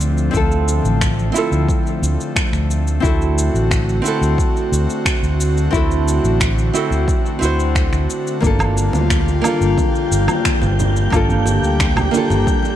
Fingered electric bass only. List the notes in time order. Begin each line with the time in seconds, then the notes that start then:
Already playing: D2
0.34 D2
0.84 A1
1.52 D2
2.02 D2
2.53 D2
3.03 D2
3.54 A1
4.21 D2
4.72 D2
5.23 D2
5.73 D2
6.24 A1
6.91 D2
7.42 D2
7.93 D2
8.43 G1
8.93 D2
9.61 G1
10.11 G1
10.62 G1
11.12 G1
11.62 D2
12.30 G1